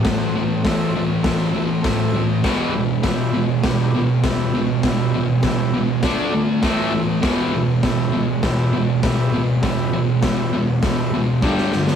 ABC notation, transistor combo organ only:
X:1
M:4/4
L:1/8
Q:1/4=100
K:Em
V:1 name="Transistor combo organ"
[Acf] z [Ace] z [Ace] z [Ace] z | [GBe] z [GBe] z [GBd] z [GBe] z | [GBe] z [GBe] z [DAd] z [EAe] z | [GBe] z [GBe] z [GBe] z [GBe] z |
[GBe] z [GBe] z [GBe] z [Gdg] z |]